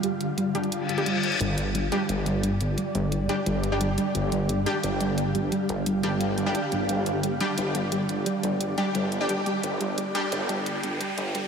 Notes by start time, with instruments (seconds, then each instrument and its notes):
Already playing: synth drone D3 G3 F4 F5
0.03 synth pluck G3, closed hi-hat
0.21 closed hi-hat
0.38 synth pluck G3, closed hi-hat
0.55 synth pluck G3, synth stab G3 D4 G4, closed hi-hat
0.64 closed hi-hat
0.72 closed hi-hat, reverse cymbal
0.89 synth pluck G3, closed hi-hat
0.98 synth stab G3 D4 G4, closed hi-hat
1.06 synth pluck G3, closed hi-hat
1.23 closed hi-hat
1.32 closed hi-hat
1.41 detuned saw bass G1, synth drone D3 G3 G4 D5, synth pluck G3, closed hi-hat
1.58 detuned saw bass G1, closed hi-hat
1.75 synth pluck G3, closed hi-hat
1.92 synth stab G3 D4 G4, synth pluck G3, closed hi-hat
2.09 detuned saw bass G1, closed hi-hat
2.26 synth pluck G3, closed hi-hat
2.43 synth pluck G3, closed hi-hat
2.61 detuned saw bass G1, closed hi-hat
2.78 synth pluck G3, closed hi-hat
2.95 detuned saw bass G1, synth pluck G3, closed hi-hat
3.12 closed hi-hat
3.29 synth pluck G3, synth stab G3 D4 G4, closed hi-hat
3.46 detuned saw bass G1, synth pluck G3, closed hi-hat
3.64 closed hi-hat
3.72 synth stab G3 D4 G4
3.81 synth pluck G3, closed hi-hat
3.98 synth pluck G3, closed hi-hat
4.15 detuned saw bass G1, synth drone F5, closed hi-hat
4.32 detuned saw bass G1, synth pluck G3, closed hi-hat
4.49 synth pluck G3, closed hi-hat
4.66 synth stab G3 D4 G4, closed hi-hat
4.83 detuned saw bass G1, synth pluck G3, closed hi-hat
5.01 synth pluck G3, closed hi-hat
5.18 closed hi-hat
5.35 detuned saw bass G1, synth pluck G3, closed hi-hat
5.52 synth pluck G3, closed hi-hat
5.69 detuned saw bass G1, closed hi-hat
5.86 synth pluck G3, closed hi-hat
6.03 detuned saw bass G1, synth pluck G3, synth stab G3 D4 G4, closed hi-hat
6.21 closed hi-hat
6.38 synth pluck G3, closed hi-hat
6.46 synth stab G3 D4 G4
6.55 synth pluck D4, closed hi-hat
6.72 detuned saw bass G1, synth pluck G3, closed hi-hat
6.89 detuned saw bass G1, synth pluck G3, synth drone D5, closed hi-hat, riser
7.06 detuned saw bass G1, closed hi-hat
7.23 synth pluck G3, closed hi-hat
7.41 synth stab G3 D4 G4, synth pluck G3, closed hi-hat
7.58 detuned saw bass G1, closed hi-hat
7.75 synth pluck G3, closed hi-hat
7.92 synth pluck G3, closed hi-hat
8.09 detuned saw bass G1, closed hi-hat
8.26 synth pluck G3, closed hi-hat
8.43 detuned saw bass G1, synth pluck G3, closed hi-hat
8.61 closed hi-hat
8.78 synth stab G3 D4 G4, synth pluck G3, closed hi-hat
8.95 detuned saw bass G1, synth pluck G3, closed hi-hat
9.12 closed hi-hat
9.21 synth stab G3 D4 G4
9.29 synth pluck G3, closed hi-hat
9.46 synth pluck G3, closed hi-hat
9.63 detuned saw bass G1, synth drone G5, closed hi-hat
9.81 detuned saw bass G1, synth pluck G3, closed hi-hat
9.98 synth pluck G3, closed hi-hat
10.15 synth stab G3 D4 G4, closed hi-hat
10.32 detuned saw bass G1, synth pluck G3, closed hi-hat
10.49 synth pluck G3, closed hi-hat
10.66 closed hi-hat
10.83 detuned saw bass G1, synth pluck G3, closed hi-hat
11.01 synth pluck G3, closed hi-hat
11.18 detuned saw bass G1, closed hi-hat
11.35 synth pluck G3, closed hi-hat